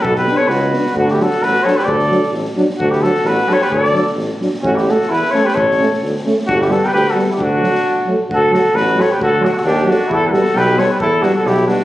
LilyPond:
<<
  \new Staff \with { instrumentName = "Trumpet" } { \time 2/4 \key b \minor \tempo 4 = 131 a'16 b'8 cis''16 b'4 | \key d \major fis'16 g'16 a'8 b'8 cis''16 b'16 | d''4 r4 | fis'16 g'16 a'8 b'8 cis''16 b'16 |
d''4 r4 | fis'16 g'16 a'8 b'8 cis''16 b'16 | cis''4 r4 | fis'16 g'16 a'16 b'16 b'16 a'8 g'16 |
fis'4. r8 | a'8 a'8 b'8 cis''16 b'16 | a'8 fis'16 a'16 g'8 fis'8 | a'16. b'32 a'8 b'8 cis''16 b'16 |
a'8 fis'16 a'16 g'8 fis'8 | }
  \new Staff \with { instrumentName = "Flugelhorn" } { \time 2/4 \key b \minor fis'16 g'8 a'16 fis'4 | \key d \major d'16 e'16 fis'8 fis'8 a'16 g'16 | a'4 r4 | d'16 e'16 fis'8 fis'8 a'16 g'16 |
a'4 r4 | cis'16 e'16 fis'8 e'8 a'16 g'16 | a'4 r4 | d'16 e'16 fis'16 g'16 g'16 fis'8 e'16 |
d'4. r8 | fis'8 fis'8 fis'8 a'16 g'16 | fis'8 d'16 fis'16 d'8 d'8 | e'16. g'32 fis'8 g'8 a'16 g'16 |
e'8 d'16 fis'16 e'8 d'8 | }
  \new Staff \with { instrumentName = "French horn" } { \time 2/4 \key b \minor r8 d'8 r8 d'8 | \key d \major r8 d'8 r8 d'8 | r8 d'8 r8 d'8 | r8 d'8 r8 d'8 |
r8 d'8 r8 d'8 | r8 cis'8 r8 cis'8 | r8 cis'8 r8 cis'8 | r8 b8 r8 b8 |
r8 a8 r8 a8 | r8 a8 r8 a8 | r8 a8 r8 a8 | r8 b8 r8 b8 |
r8 b8 r8 b8 | }
  \new Staff \with { instrumentName = "Euphonium" } { \clef bass \time 2/4 \key b \minor r8 b8 r8 b8 | \key d \major r8 fis8 r8 fis8 | r8 fis8 r8 fis8 | r8 fis8 r8 fis8 |
r8 fis8 r8 fis8 | r8 a8 r8 a8 | r8 a8 r8 a8 | r8 g8 r8 g8 |
r8 fis8 r8 fis8 | r8 fis8 r8 fis8 | r8 fis8 r8 fis8 | r8 g8 r8 g8 |
r8 g8 r8 g8 | }
  \new Staff \with { instrumentName = "Tuba" } { \clef bass \time 2/4 \key b \minor b,,4 cis,4 | \key d \major d,4 a,,8 r8 | d,4 a,,8 r8 | d,4 a,,8 r8 |
d,4 a,,8 r8 | a,,4 e,8 r8 | a,,4 d,8 r8 | g,,4 d,8 r8 |
d,4 r4 | d,4 a,,4 | d,4 ees,4 | e,4 b,,4 |
e,4 b,,4 | }
  \new DrumStaff \with { instrumentName = "Drums" } \drummode { \time 2/4 bd16 sn16 sn8 sn8 sn16 sn16 | bd16 sn16 sn16 sn16 sn16 sn16 sn16 sn16 | bd16 sn16 sn16 sn16 sn16 sn16 sn16 sn16 | bd16 sn16 sn16 sn16 sn16 sn16 sn16 sn16 |
bd16 sn16 sn16 sn16 sn8 sn16 sn16 | bd16 sn16 sn16 sn16 sn16 sn16 sn16 sn16 | bd16 sn16 sn16 sn16 sn16 sn16 sn16 sn16 | bd16 sn16 sn16 sn16 sn16 sn16 sn16 sn16 |
bd8 sn16 sn16 r4 | bd8 sn8 sn8 sn8 | bd8 sn16 sn16 sn8 sn8 | bd8 sn16 sn16 sn8 sn8 |
bd8 sn8 sn8 sn16 sn16 | }
>>